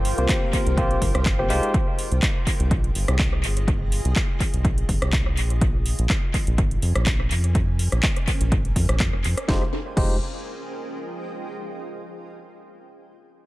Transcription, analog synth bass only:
0.00 0.14 G1 medium
0.18 0.27 C2 medium
0.67 0.79 C2 medium
0.77 0.98 A#1 loud
1.02 1.12 G1 medium
1.15 1.27 C2 loud
1.26 1.37 G1 medium
1.39 1.52 G1 loud
1.50 1.61 C2 medium
2.12 2.21 C2 medium
2.60 2.73 C2 medium
2.71 2.91 A#1 loud
2.95 3.06 G1 medium
3.08 3.45 C2 loud
3.43 4.01 G1 medium
4.05 4.14 C2 loud
4.53 4.66 C2 medium
4.65 4.85 A#1 loud
4.89 4.99 G1 medium
5.02 5.39 C2 loud
5.37 5.95 A#1 medium
5.99 6.08 A#1 loud
6.47 6.60 A#1 medium
6.58 6.78 G#1 loud
6.82 6.93 F2 medium
6.96 7.32 A#1 loud
7.31 7.88 F2 medium
7.92 8.01 A#1 loud
8.41 8.53 A#1 medium
8.52 8.72 G#1 medium
8.76 8.87 F2 medium
8.89 9.02 A#1 loud
9.00 9.11 F2 medium
9.13 9.26 F1 loud
9.24 9.35 F2 medium
9.49 9.63 F1 medium
9.97 10.19 F1 medium

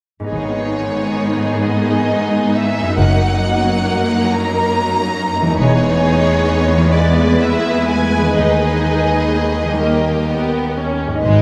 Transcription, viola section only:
0.31 2.95 D#3 soft
0.31 2.94 B3 soft
2.98 5.55 F#3 soft
2.98 5.55 A#3 soft
5.59 9.78 G#3 soft
5.59 8.34 B3 medium
8.39 9.69 D#4 soft
9.83 10.28 A#3 soft
10.30 10.77 B3 soft
10.79 11.25 C#4 soft
11.25 11.42 G#3 soft
11.25 11.42 D#4 soft

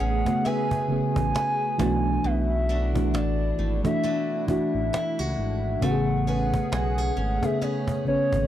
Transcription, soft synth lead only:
0.00 0.48 F#5 loud
0.46 2.27 G#5 loud
2.25 3.14 E5 loud
3.15 3.81 D5 medium
3.86 4.45 E5 loud
4.49 5.85 E5 loud
5.84 6.73 F#5 loud
6.74 7.46 F#5 loud
7.44 7.62 E5 medium
7.63 8.04 C#5 medium
8.08 8.47 C#5 loud

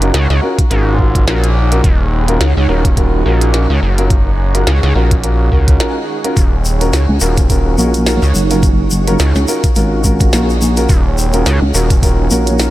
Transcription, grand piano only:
0.02 0.13 C#4 medium
0.02 0.13 F4 medium
0.02 0.13 F#4 medium
0.02 0.13 A#4 loud
0.43 0.57 C#4 medium
0.43 0.57 F4 medium
0.43 0.57 F#4 medium
0.43 0.57 A#4 loud
0.71 0.92 C#4 loud
0.71 0.92 F4 medium
0.71 0.92 F#4 medium
0.71 0.92 A#4 loud
0.99 1.25 C#4 medium
0.99 1.24 F4 medium
0.99 1.24 F#4 medium
0.99 1.24 A#4 medium
1.27 1.41 C#4 medium
1.27 1.41 F4 medium
1.27 1.41 F#4 medium
1.27 1.41 A#4 medium
1.72 1.83 C#4 medium
1.72 1.83 F4 medium
1.72 1.82 F#4 medium
1.72 1.83 A#4 loud
2.28 2.39 C#4 loud
2.28 2.39 F4 medium
2.28 2.39 F#4 medium
2.28 2.39 A#4 loud
2.69 2.83 C#4 loud
2.69 2.83 F4 medium
2.69 2.83 F#4 medium
2.69 2.83 A#4 loud
2.97 3.18 C#4 loud
2.97 3.18 F4 medium
2.97 3.18 F#4 medium
2.97 3.18 A#4 loud
3.26 3.51 C#4 medium
3.26 3.51 F4 medium
3.26 3.51 F#4 medium
3.26 3.51 A#4 loud
3.54 3.68 C#4 medium
3.54 3.68 F4 medium
3.54 3.68 F#4 medium
3.54 3.68 A#4 medium
3.98 4.09 C#4 medium
3.98 4.09 F4 medium
3.98 4.09 F#4 medium
3.98 4.09 A#4 loud
4.55 4.65 C#4 medium
4.55 4.65 F4 medium
4.55 4.65 F#4 medium
4.55 4.65 A#4 loud
4.95 5.09 C#4 medium
4.95 5.09 F4 medium
4.95 5.09 F#4 medium
4.95 5.09 A#4 loud
5.23 5.44 C#4 medium
5.23 5.44 F4 medium
5.23 5.44 F#4 medium
5.23 5.44 A#4 loud
5.52 5.77 C#4 medium
5.52 5.77 F4 medium
5.52 5.77 F#4 medium
5.52 5.77 A#4 medium
5.80 5.94 C#4 medium
5.80 5.94 F4 medium
5.80 5.94 F#4 medium
5.80 5.94 A#4 medium
6.24 6.35 C#4 loud
6.24 6.35 F4 medium
6.24 6.35 F#4 medium
6.24 6.35 A#4 loud
6.81 6.92 C#4 medium
6.81 6.92 F4 medium
6.81 6.92 F#4 medium
6.81 6.92 A#4 loud
7.21 7.36 C#4 medium
7.21 7.36 F4 medium
7.21 7.36 F#4 medium
7.21 7.36 A#4 loud
7.50 7.71 C#4 medium
7.50 7.71 F4 medium
7.50 7.71 F#4 medium
7.50 7.71 A#4 loud
7.78 8.03 C#4 medium
7.78 8.03 F4 medium
7.78 8.03 F#4 medium
7.78 8.03 A#4 medium
8.06 8.20 C#4 medium
8.06 8.20 F4 medium
8.06 8.20 F#4 medium
8.06 8.20 A#4 medium
8.51 8.62 C#4 loud
8.51 8.62 F4 medium
8.51 8.62 F#4 medium
8.51 8.62 A#4 loud
9.07 9.18 C#4 medium
9.07 9.18 F4 medium
9.07 9.18 F#4 medium
9.07 9.18 A#4 loud
9.48 9.62 C#4 medium
9.48 9.62 F4 medium
9.48 9.62 F#4 medium
9.48 9.62 A#4 loud
9.76 9.97 C#4 medium
9.76 9.97 F4 medium
9.76 9.97 F#4 medium
9.76 9.97 A#4 loud
10.04 10.30 C#4 medium
10.04 10.30 F4 medium
10.04 10.30 F#4 medium
10.04 10.30 A#4 loud
10.33 10.47 C#4 medium
10.33 10.47 F4 medium
10.33 10.47 F#4 medium
10.33 10.47 A#4 medium
10.77 10.88 C#4 loud
10.77 10.88 F4 medium
10.77 10.88 F#4 medium
10.77 10.88 A#4 loud
11.34 11.45 C#4 loud
11.34 11.45 F4 medium
11.34 11.45 F#4 medium
11.34 11.45 A#4 loud
11.75 11.89 C#4 loud
11.75 11.89 F4 medium
11.75 11.88 F#4 medium
11.75 11.88 A#4 loud
12.03 12.24 C#4 loud
12.03 12.24 F4 medium
12.03 12.24 F#4 medium
12.03 12.24 A#4 loud
12.31 12.57 C#4 medium
12.31 12.57 F4 medium
12.31 12.57 F#4 medium
12.31 12.57 A#4 loud
12.59 12.70 C#4 medium
12.59 12.70 F4 medium
12.59 12.70 F#4 medium
12.59 12.70 A#4 medium

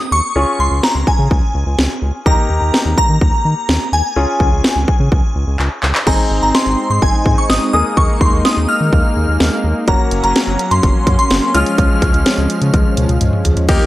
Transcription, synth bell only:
0.00 0.14 D#6 loud
0.12 0.61 C#6 loud
0.60 0.84 C6 medium
0.84 1.06 A#5 medium
1.08 1.98 G#5 medium
2.27 2.97 A#5 loud
2.98 3.96 A#5 loud
3.93 5.56 G#5 medium
6.07 6.42 A#5 medium
6.43 6.55 A#5 medium
6.55 6.89 C6 medium
6.91 7.03 C6 medium
7.02 7.39 G#5 medium
7.38 7.50 C#6 medium
7.50 7.72 D#6 medium
7.73 7.98 D#6 loud
7.97 8.22 C#6 loud
8.21 8.46 C6 medium
8.45 8.67 D#6 loud
8.69 9.60 F6 loud
9.88 10.21 A#5 medium
10.24 10.73 A#5 medium
10.71 11.18 C6 medium
11.19 11.56 C6 medium
11.54 13.17 F6 loud

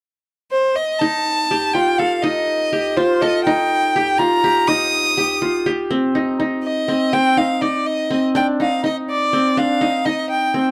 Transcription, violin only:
0.52 0.77 C5 medium
0.75 1.01 D#5 medium
0.99 1.75 A5 medium
1.73 2.00 G5 medium
1.99 2.24 F5 medium
2.23 2.98 D#5 medium
2.96 3.23 C5 medium
3.21 3.44 D#5 medium
3.44 4.19 G5 medium
4.18 4.69 A#5 loud
4.67 5.65 D#6 medium
6.63 7.14 D#5 medium
7.13 7.39 G5 medium
7.37 7.63 F5 medium
7.61 7.88 D5 medium
7.86 8.22 D#5 medium
8.36 8.46 G5 medium
8.61 8.82 F5 medium
8.85 8.96 D#5 medium
9.10 9.59 D5 medium
9.58 10.07 F5 medium
10.05 10.29 D#5 medium
10.30 10.64 G5 medium

